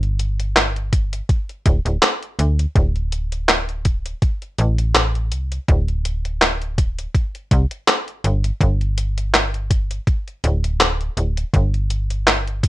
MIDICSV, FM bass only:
0, 0, Header, 1, 2, 480
1, 0, Start_track
1, 0, Tempo, 731707
1, 1807, Time_signature, 4, 2, 24, 8
1, 8318, End_track
2, 0, Start_track
2, 0, Title_t, "FM bass"
2, 0, Program_c, 0, 39
2, 0, Note_on_c, 0, 31, 101
2, 799, Note_off_c, 0, 31, 0
2, 1088, Note_on_c, 0, 26, 97
2, 1183, Note_off_c, 0, 26, 0
2, 1217, Note_on_c, 0, 26, 86
2, 1297, Note_off_c, 0, 26, 0
2, 1567, Note_on_c, 0, 38, 84
2, 1747, Note_off_c, 0, 38, 0
2, 1807, Note_on_c, 0, 26, 95
2, 2719, Note_off_c, 0, 26, 0
2, 3008, Note_on_c, 0, 33, 101
2, 3489, Note_on_c, 0, 36, 84
2, 3499, Note_off_c, 0, 33, 0
2, 3668, Note_off_c, 0, 36, 0
2, 3729, Note_on_c, 0, 26, 101
2, 4640, Note_off_c, 0, 26, 0
2, 4928, Note_on_c, 0, 36, 94
2, 5023, Note_off_c, 0, 36, 0
2, 5408, Note_on_c, 0, 31, 94
2, 5588, Note_off_c, 0, 31, 0
2, 5647, Note_on_c, 0, 31, 98
2, 6559, Note_off_c, 0, 31, 0
2, 6849, Note_on_c, 0, 26, 103
2, 7280, Note_off_c, 0, 26, 0
2, 7327, Note_on_c, 0, 26, 83
2, 7507, Note_off_c, 0, 26, 0
2, 7568, Note_on_c, 0, 31, 95
2, 8318, Note_off_c, 0, 31, 0
2, 8318, End_track
0, 0, End_of_file